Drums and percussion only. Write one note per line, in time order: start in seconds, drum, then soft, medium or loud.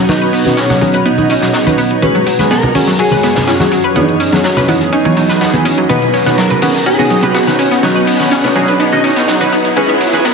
0.09 snare medium
0.09 closed hi-hat medium
0.09 tambourine medium
0.09 high conga medium
0.21 closed hi-hat soft
0.33 open hi-hat medium
0.33 open hi-hat loud
0.46 snare soft
0.46 closed hi-hat medium
0.46 high conga medium
0.57 snare loud
0.57 closed hi-hat medium
0.57 tambourine medium
0.70 snare soft
0.70 open hi-hat medium
0.70 low conga medium
0.81 open hi-hat loud
0.81 tambourine medium
0.81 high conga loud
0.93 closed hi-hat soft
0.93 closed hi-hat medium
1.06 closed hi-hat medium
1.06 tambourine medium
1.18 closed hi-hat soft
1.18 high conga medium
1.30 open hi-hat loud
1.30 tambourine medium
1.41 snare medium
1.41 closed hi-hat medium
1.53 snare loud
1.53 closed hi-hat medium
1.53 tambourine medium
1.67 closed hi-hat soft
1.67 high conga loud
1.78 open hi-hat loud
1.78 tambourine medium
1.91 closed hi-hat medium
2.02 closed hi-hat medium
2.02 tambourine medium
2.02 high conga medium
2.15 closed hi-hat soft
2.26 open hi-hat loud
2.26 tambourine medium
2.39 snare soft
2.39 closed hi-hat soft
2.39 high conga medium
2.51 snare loud
2.51 closed hi-hat medium
2.51 tambourine medium
2.63 closed hi-hat soft
2.63 low conga loud
2.75 open hi-hat medium
2.75 open hi-hat loud
2.75 high conga loud
2.87 snare soft
2.87 closed hi-hat medium
2.99 closed hi-hat medium
2.99 tambourine medium
3.11 closed hi-hat soft
3.11 high conga medium
3.11 low conga medium
3.23 snare loud
3.23 open hi-hat loud
3.23 tambourine medium
3.35 snare loud
3.35 closed hi-hat medium
3.35 tambourine medium
3.35 low conga medium
3.47 snare loud
3.47 closed hi-hat medium
3.47 tambourine medium
3.60 snare soft
3.60 high conga loud
3.72 open hi-hat loud
3.84 closed hi-hat soft
3.95 closed hi-hat medium
3.95 tambourine medium
3.95 high conga medium
4.08 closed hi-hat soft
4.20 open hi-hat loud
4.20 tambourine medium
4.33 snare medium
4.33 closed hi-hat medium
4.33 high conga medium
4.43 snare loud
4.43 closed hi-hat medium
4.43 tambourine loud
4.57 snare soft
4.57 open hi-hat medium
4.57 low conga medium
4.68 open hi-hat loud
4.68 tambourine medium
4.68 high conga medium
4.81 closed hi-hat soft
4.93 closed hi-hat medium
4.93 tambourine medium
5.05 closed hi-hat soft
5.05 high conga medium
5.17 open hi-hat loud
5.17 tambourine medium
5.29 snare medium
5.29 closed hi-hat soft
5.41 snare loud
5.41 closed hi-hat medium
5.41 tambourine medium
5.53 closed hi-hat soft
5.53 high conga medium
5.65 open hi-hat loud
5.65 tambourine medium
5.78 closed hi-hat medium
5.90 closed hi-hat medium
5.90 tambourine medium
5.90 high conga medium
6.02 closed hi-hat soft
6.14 open hi-hat loud
6.14 tambourine medium
6.26 snare soft
6.26 closed hi-hat medium
6.26 high conga medium
6.37 snare loud
6.37 closed hi-hat medium
6.37 tambourine medium
6.50 closed hi-hat soft
6.50 low conga loud
6.62 open hi-hat medium
6.62 open hi-hat loud
6.62 high conga medium
6.75 snare soft
6.75 closed hi-hat medium
6.86 closed hi-hat medium
6.86 tambourine loud
6.99 closed hi-hat soft
6.99 high conga medium
6.99 low conga medium
7.10 open hi-hat loud
7.10 tambourine medium
7.22 closed hi-hat soft
7.22 closed hi-hat medium
7.22 low conga medium
7.34 snare loud
7.34 closed hi-hat medium
7.34 tambourine medium
7.47 snare medium
7.47 high conga medium
7.58 open hi-hat loud
7.58 tambourine medium
7.71 snare soft
7.71 closed hi-hat soft
7.83 snare loud
7.83 closed hi-hat medium
7.83 tambourine medium
7.83 high conga medium
7.96 closed hi-hat soft
8.07 open hi-hat loud
8.07 open hi-hat medium
8.20 snare soft
8.20 closed hi-hat medium
8.20 high conga medium
8.31 snare loud
8.31 closed hi-hat medium
8.31 tambourine loud
8.44 snare soft
8.44 open hi-hat medium
8.44 low conga medium
8.55 open hi-hat loud
8.55 tambourine medium
8.55 high conga medium
8.68 closed hi-hat medium
8.68 closed hi-hat soft
8.80 closed hi-hat medium
8.80 tambourine medium
8.92 closed hi-hat soft
8.92 high conga medium
9.04 open hi-hat loud
9.04 tambourine medium
9.17 snare soft
9.17 closed hi-hat medium
9.28 snare loud
9.28 closed hi-hat medium
9.28 tambourine medium
9.41 closed hi-hat soft
9.41 high conga medium
9.52 open hi-hat loud
9.52 tambourine medium
9.65 closed hi-hat medium
9.76 closed hi-hat medium
9.76 tambourine medium
9.76 high conga medium
9.89 closed hi-hat soft
10.00 open hi-hat loud
10.00 tambourine medium
10.13 snare soft
10.13 closed hi-hat medium
10.13 high conga medium
10.24 snare loud
10.24 closed hi-hat medium
10.24 tambourine medium